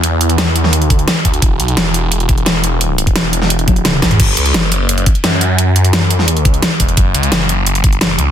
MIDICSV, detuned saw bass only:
0, 0, Header, 1, 2, 480
1, 0, Start_track
1, 0, Tempo, 346821
1, 48, Time_signature, 4, 2, 24, 8
1, 11504, End_track
2, 0, Start_track
2, 0, Title_t, "Detuned saw bass"
2, 0, Program_c, 0, 39
2, 0, Note_on_c, 0, 40, 97
2, 911, Note_off_c, 0, 40, 0
2, 911, Note_on_c, 0, 39, 97
2, 1284, Note_off_c, 0, 39, 0
2, 1284, Note_on_c, 0, 38, 97
2, 1469, Note_off_c, 0, 38, 0
2, 1729, Note_on_c, 0, 38, 94
2, 1949, Note_off_c, 0, 38, 0
2, 1968, Note_on_c, 0, 28, 99
2, 2189, Note_off_c, 0, 28, 0
2, 2209, Note_on_c, 0, 35, 96
2, 2429, Note_off_c, 0, 35, 0
2, 2448, Note_on_c, 0, 28, 96
2, 3149, Note_off_c, 0, 28, 0
2, 3169, Note_on_c, 0, 28, 96
2, 4349, Note_off_c, 0, 28, 0
2, 4369, Note_on_c, 0, 28, 103
2, 5550, Note_off_c, 0, 28, 0
2, 5569, Note_on_c, 0, 40, 98
2, 5789, Note_off_c, 0, 40, 0
2, 5809, Note_on_c, 0, 30, 97
2, 6030, Note_off_c, 0, 30, 0
2, 6049, Note_on_c, 0, 37, 101
2, 6269, Note_off_c, 0, 37, 0
2, 6289, Note_on_c, 0, 30, 96
2, 6989, Note_off_c, 0, 30, 0
2, 7249, Note_on_c, 0, 42, 99
2, 8619, Note_off_c, 0, 42, 0
2, 8619, Note_on_c, 0, 40, 99
2, 8923, Note_off_c, 0, 40, 0
2, 8923, Note_on_c, 0, 38, 99
2, 9149, Note_off_c, 0, 38, 0
2, 9409, Note_on_c, 0, 28, 96
2, 9630, Note_off_c, 0, 28, 0
2, 9649, Note_on_c, 0, 30, 96
2, 9870, Note_off_c, 0, 30, 0
2, 9889, Note_on_c, 0, 37, 93
2, 10109, Note_off_c, 0, 37, 0
2, 10128, Note_on_c, 0, 30, 100
2, 10829, Note_off_c, 0, 30, 0
2, 10849, Note_on_c, 0, 31, 101
2, 11309, Note_off_c, 0, 31, 0
2, 11328, Note_on_c, 0, 37, 93
2, 11504, Note_off_c, 0, 37, 0
2, 11504, End_track
0, 0, End_of_file